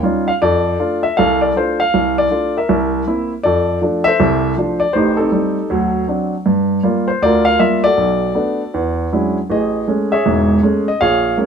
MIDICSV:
0, 0, Header, 1, 2, 480
1, 0, Start_track
1, 0, Key_signature, -1, "major"
1, 0, Tempo, 378072
1, 526, Time_signature, 4, 2, 24, 8
1, 14550, End_track
2, 0, Start_track
2, 0, Title_t, "Grand piano"
2, 0, Program_c, 0, 0
2, 0, Note_on_c, 0, 73, 62
2, 37, Note_on_c, 0, 55, 52
2, 38, Note_on_c, 0, 61, 47
2, 39, Note_on_c, 0, 63, 43
2, 45, Note_on_c, 0, 65, 55
2, 307, Note_off_c, 0, 73, 0
2, 351, Note_on_c, 0, 77, 78
2, 362, Note_off_c, 0, 55, 0
2, 362, Note_off_c, 0, 61, 0
2, 363, Note_off_c, 0, 63, 0
2, 366, Note_off_c, 0, 65, 0
2, 414, Note_off_c, 0, 77, 0
2, 529, Note_on_c, 0, 74, 87
2, 533, Note_on_c, 0, 41, 67
2, 545, Note_on_c, 0, 69, 59
2, 943, Note_off_c, 0, 41, 0
2, 1007, Note_on_c, 0, 57, 46
2, 1011, Note_on_c, 0, 65, 53
2, 1012, Note_on_c, 0, 62, 45
2, 1260, Note_off_c, 0, 74, 0
2, 1309, Note_on_c, 0, 76, 80
2, 1327, Note_off_c, 0, 57, 0
2, 1329, Note_off_c, 0, 65, 0
2, 1330, Note_off_c, 0, 62, 0
2, 1445, Note_off_c, 0, 69, 0
2, 1473, Note_off_c, 0, 76, 0
2, 1486, Note_on_c, 0, 77, 86
2, 1499, Note_on_c, 0, 69, 64
2, 1510, Note_on_c, 0, 36, 68
2, 1768, Note_off_c, 0, 77, 0
2, 1795, Note_on_c, 0, 74, 78
2, 1912, Note_off_c, 0, 36, 0
2, 1957, Note_off_c, 0, 74, 0
2, 1984, Note_on_c, 0, 57, 51
2, 1986, Note_on_c, 0, 62, 48
2, 1993, Note_on_c, 0, 65, 55
2, 1996, Note_on_c, 0, 72, 74
2, 2282, Note_on_c, 0, 77, 85
2, 2292, Note_off_c, 0, 72, 0
2, 2296, Note_off_c, 0, 57, 0
2, 2297, Note_off_c, 0, 62, 0
2, 2300, Note_off_c, 0, 65, 0
2, 2402, Note_off_c, 0, 69, 0
2, 2464, Note_on_c, 0, 36, 64
2, 2723, Note_off_c, 0, 77, 0
2, 2770, Note_on_c, 0, 74, 89
2, 2869, Note_off_c, 0, 36, 0
2, 2924, Note_on_c, 0, 57, 50
2, 2929, Note_on_c, 0, 62, 47
2, 2935, Note_on_c, 0, 65, 55
2, 3246, Note_off_c, 0, 57, 0
2, 3248, Note_off_c, 0, 62, 0
2, 3251, Note_off_c, 0, 65, 0
2, 3254, Note_off_c, 0, 74, 0
2, 3266, Note_on_c, 0, 70, 54
2, 3270, Note_on_c, 0, 76, 69
2, 3418, Note_on_c, 0, 36, 70
2, 3826, Note_off_c, 0, 36, 0
2, 3900, Note_on_c, 0, 58, 45
2, 3901, Note_on_c, 0, 60, 43
2, 3904, Note_on_c, 0, 64, 54
2, 4157, Note_off_c, 0, 70, 0
2, 4159, Note_off_c, 0, 76, 0
2, 4213, Note_off_c, 0, 58, 0
2, 4214, Note_off_c, 0, 60, 0
2, 4216, Note_off_c, 0, 64, 0
2, 4361, Note_on_c, 0, 74, 86
2, 4384, Note_on_c, 0, 41, 62
2, 4388, Note_on_c, 0, 69, 65
2, 4789, Note_off_c, 0, 41, 0
2, 4809, Note_off_c, 0, 74, 0
2, 4844, Note_on_c, 0, 53, 49
2, 4855, Note_on_c, 0, 57, 42
2, 4862, Note_on_c, 0, 62, 54
2, 5132, Note_on_c, 0, 76, 102
2, 5149, Note_off_c, 0, 69, 0
2, 5166, Note_off_c, 0, 53, 0
2, 5168, Note_on_c, 0, 69, 65
2, 5171, Note_off_c, 0, 57, 0
2, 5173, Note_on_c, 0, 72, 64
2, 5174, Note_off_c, 0, 62, 0
2, 5329, Note_on_c, 0, 36, 71
2, 5331, Note_on_c, 0, 48, 70
2, 5741, Note_off_c, 0, 36, 0
2, 5742, Note_off_c, 0, 48, 0
2, 5751, Note_off_c, 0, 76, 0
2, 5811, Note_on_c, 0, 53, 50
2, 5812, Note_on_c, 0, 57, 46
2, 5819, Note_on_c, 0, 62, 55
2, 6067, Note_off_c, 0, 69, 0
2, 6070, Note_off_c, 0, 72, 0
2, 6090, Note_on_c, 0, 74, 83
2, 6129, Note_off_c, 0, 53, 0
2, 6129, Note_off_c, 0, 57, 0
2, 6133, Note_off_c, 0, 62, 0
2, 6262, Note_on_c, 0, 72, 77
2, 6263, Note_off_c, 0, 74, 0
2, 6289, Note_on_c, 0, 45, 65
2, 6292, Note_on_c, 0, 33, 67
2, 6305, Note_on_c, 0, 63, 60
2, 6306, Note_on_c, 0, 67, 57
2, 6554, Note_off_c, 0, 72, 0
2, 6564, Note_on_c, 0, 69, 74
2, 6583, Note_off_c, 0, 63, 0
2, 6602, Note_on_c, 0, 63, 56
2, 6604, Note_on_c, 0, 60, 55
2, 6701, Note_off_c, 0, 45, 0
2, 6702, Note_off_c, 0, 33, 0
2, 6751, Note_off_c, 0, 60, 0
2, 6754, Note_on_c, 0, 55, 48
2, 6762, Note_on_c, 0, 57, 43
2, 6770, Note_on_c, 0, 60, 52
2, 7080, Note_off_c, 0, 55, 0
2, 7084, Note_off_c, 0, 57, 0
2, 7088, Note_off_c, 0, 60, 0
2, 7205, Note_off_c, 0, 67, 0
2, 7206, Note_off_c, 0, 63, 0
2, 7236, Note_on_c, 0, 54, 71
2, 7239, Note_on_c, 0, 38, 64
2, 7485, Note_off_c, 0, 69, 0
2, 7654, Note_off_c, 0, 54, 0
2, 7655, Note_off_c, 0, 38, 0
2, 7717, Note_on_c, 0, 54, 53
2, 7721, Note_on_c, 0, 60, 44
2, 7727, Note_on_c, 0, 62, 56
2, 8041, Note_off_c, 0, 54, 0
2, 8043, Note_off_c, 0, 60, 0
2, 8046, Note_off_c, 0, 62, 0
2, 8199, Note_on_c, 0, 43, 65
2, 8615, Note_off_c, 0, 43, 0
2, 8677, Note_on_c, 0, 55, 54
2, 8687, Note_on_c, 0, 58, 47
2, 8689, Note_on_c, 0, 65, 53
2, 8985, Note_on_c, 0, 72, 75
2, 9001, Note_off_c, 0, 55, 0
2, 9006, Note_off_c, 0, 58, 0
2, 9007, Note_off_c, 0, 65, 0
2, 9167, Note_on_c, 0, 38, 72
2, 9169, Note_off_c, 0, 72, 0
2, 9174, Note_on_c, 0, 74, 93
2, 9204, Note_on_c, 0, 65, 65
2, 9208, Note_on_c, 0, 70, 68
2, 9451, Note_off_c, 0, 74, 0
2, 9458, Note_on_c, 0, 77, 93
2, 9579, Note_off_c, 0, 38, 0
2, 9627, Note_off_c, 0, 77, 0
2, 9635, Note_off_c, 0, 65, 0
2, 9641, Note_on_c, 0, 76, 90
2, 9643, Note_on_c, 0, 55, 53
2, 9645, Note_on_c, 0, 58, 46
2, 9655, Note_on_c, 0, 65, 58
2, 9950, Note_on_c, 0, 74, 97
2, 9955, Note_off_c, 0, 76, 0
2, 9964, Note_off_c, 0, 55, 0
2, 9965, Note_off_c, 0, 58, 0
2, 9970, Note_off_c, 0, 65, 0
2, 9972, Note_on_c, 0, 66, 55
2, 9972, Note_on_c, 0, 69, 58
2, 10095, Note_off_c, 0, 70, 0
2, 10122, Note_on_c, 0, 35, 65
2, 10537, Note_off_c, 0, 35, 0
2, 10596, Note_on_c, 0, 57, 50
2, 10603, Note_on_c, 0, 59, 42
2, 10609, Note_on_c, 0, 62, 56
2, 10921, Note_off_c, 0, 57, 0
2, 10924, Note_off_c, 0, 59, 0
2, 10927, Note_off_c, 0, 62, 0
2, 11046, Note_off_c, 0, 69, 0
2, 11098, Note_on_c, 0, 40, 71
2, 11338, Note_off_c, 0, 74, 0
2, 11349, Note_off_c, 0, 66, 0
2, 11505, Note_off_c, 0, 40, 0
2, 11584, Note_on_c, 0, 54, 51
2, 11586, Note_on_c, 0, 62, 44
2, 11591, Note_on_c, 0, 61, 45
2, 11592, Note_on_c, 0, 56, 45
2, 11592, Note_on_c, 0, 64, 54
2, 11895, Note_off_c, 0, 54, 0
2, 11896, Note_off_c, 0, 62, 0
2, 11898, Note_off_c, 0, 61, 0
2, 11899, Note_off_c, 0, 56, 0
2, 11899, Note_off_c, 0, 64, 0
2, 12056, Note_on_c, 0, 33, 62
2, 12079, Note_on_c, 0, 68, 57
2, 12079, Note_on_c, 0, 75, 77
2, 12464, Note_off_c, 0, 33, 0
2, 12510, Note_off_c, 0, 75, 0
2, 12539, Note_on_c, 0, 56, 51
2, 12539, Note_on_c, 0, 57, 46
2, 12548, Note_on_c, 0, 61, 54
2, 12839, Note_off_c, 0, 68, 0
2, 12847, Note_on_c, 0, 76, 82
2, 12852, Note_off_c, 0, 57, 0
2, 12853, Note_off_c, 0, 56, 0
2, 12857, Note_off_c, 0, 61, 0
2, 12858, Note_on_c, 0, 68, 66
2, 12866, Note_on_c, 0, 73, 63
2, 13019, Note_on_c, 0, 28, 72
2, 13019, Note_on_c, 0, 44, 71
2, 13426, Note_off_c, 0, 28, 0
2, 13426, Note_off_c, 0, 44, 0
2, 13449, Note_off_c, 0, 76, 0
2, 13497, Note_on_c, 0, 57, 47
2, 13498, Note_on_c, 0, 56, 54
2, 13503, Note_on_c, 0, 61, 60
2, 13752, Note_off_c, 0, 68, 0
2, 13756, Note_off_c, 0, 73, 0
2, 13812, Note_off_c, 0, 56, 0
2, 13812, Note_off_c, 0, 57, 0
2, 13814, Note_on_c, 0, 75, 83
2, 13815, Note_off_c, 0, 61, 0
2, 13967, Note_off_c, 0, 75, 0
2, 13974, Note_on_c, 0, 77, 91
2, 13983, Note_on_c, 0, 34, 60
2, 13988, Note_on_c, 0, 73, 68
2, 13990, Note_on_c, 0, 68, 67
2, 14388, Note_off_c, 0, 34, 0
2, 14416, Note_off_c, 0, 77, 0
2, 14440, Note_on_c, 0, 56, 48
2, 14446, Note_on_c, 0, 58, 48
2, 14454, Note_on_c, 0, 61, 51
2, 14550, Note_off_c, 0, 56, 0
2, 14550, Note_off_c, 0, 58, 0
2, 14550, Note_off_c, 0, 61, 0
2, 14550, Note_off_c, 0, 68, 0
2, 14550, Note_off_c, 0, 73, 0
2, 14550, End_track
0, 0, End_of_file